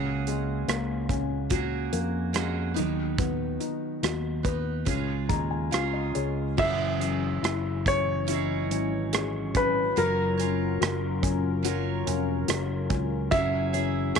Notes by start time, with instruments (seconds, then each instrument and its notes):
Already playing: fingered electric bass C#2, steel-string acoustic guitar C#3 A#3 C#4 F#4 G#4, felt piano C#3
0.27 felt piano G#3, closed hi-hat
0.68 fingered electric bass C#2, felt piano A#3, cross-stick, closed hi-hat
1.09 felt piano C#4, kick, closed hi-hat
1.50 steel-string acoustic guitar A#3 C#4 F#4 G#4, felt piano F#4, kick, closed hi-hat
1.93 fingered electric bass F2, felt piano A#3, closed hi-hat
2.33 felt piano G#3, steel-string acoustic guitar A#3 C#4 F#4 G#4, cross-stick, closed hi-hat
2.74 fingered electric bass D#2, felt piano D#3, steel-string acoustic guitar F#3 B3 D#4 B4, closed hi-hat
2.79 steel-string acoustic guitar D#3
3.18 felt piano B3, kick, closed hi-hat
3.60 felt piano D#4, closed hi-hat
4.03 fingered electric bass D#2, felt piano F#4, cross-stick, closed hi-hat
4.43 steel-string acoustic guitar B3 D#4 B4, felt piano B4, kick, closed hi-hat
4.85 fingered electric bass C#2, felt piano C#3, steel-string acoustic guitar G#3 C#4 F4 G#4, kick, closed hi-hat
5.29 fingered electric bass D#2, felt piano G#3 A#5, kick, closed hi-hat
5.51 felt piano G#5
5.71 fingered electric bass C#2, steel-string acoustic guitar G#3 C#4 F4 G#4, felt piano F4 F5, cross-stick, closed hi-hat
5.93 felt piano D#5
6.15 fingered electric bass C#2, felt piano G#4 C#5, closed hi-hat
6.57 fingered electric bass F#1, analog synth pad E3 F#3 C#4, steel-string acoustic guitar F#3 C#4 E4 G#4, felt piano F#3, grand piano E5, kick, crash
6.99 felt piano C#4, steel-string acoustic guitar E4 G#4, closed hi-hat
7.43 fingered electric bass F#1, felt piano E4, cross-stick, closed hi-hat
7.86 felt piano C#4, grand piano C#5, kick, closed hi-hat
8.27 steel-string acoustic guitar C#4 E4, felt piano E4, closed hi-hat
8.31 steel-string acoustic guitar D#4 G#4
8.71 fingered electric bass G#1, felt piano C#4, closed hi-hat
9.13 felt piano G#4, cross-stick, closed hi-hat
9.55 felt piano C#4, grand piano B4, kick, closed hi-hat
9.96 fingered electric bass F#1, steel-string acoustic guitar F#3 F4 A#4 C#5, felt piano F#3, analog synth pad C#4 F4 A#4, grand piano A#4, closed hi-hat
10.37 felt piano C#4, steel-string acoustic guitar F4 A#4 C#5, closed hi-hat
10.81 fingered electric bass F#1, felt piano F#3, cross-stick, closed hi-hat
11.22 felt piano C#4, kick, closed hi-hat
11.63 steel-string acoustic guitar F#3 F4, felt piano F#3, closed hi-hat
11.67 steel-string acoustic guitar A#4 C#5
12.07 fingered electric bass F1, felt piano C#4, closed hi-hat
12.48 fingered electric bass F#1, felt piano F#3, cross-stick, closed hi-hat
12.89 fingered electric bass C#2, felt piano C#4, kick, closed hi-hat
13.31 fingered electric bass F#1, analog synth pad E3 F#3 C#4, steel-string acoustic guitar F#3 C#4 E4 G#4, felt piano F#3, grand piano E5, kick, closed hi-hat
13.73 felt piano C#4, steel-string acoustic guitar E4 G#4, closed hi-hat
14.15 fingered electric bass F#1, felt piano G#4, cross-stick, closed hi-hat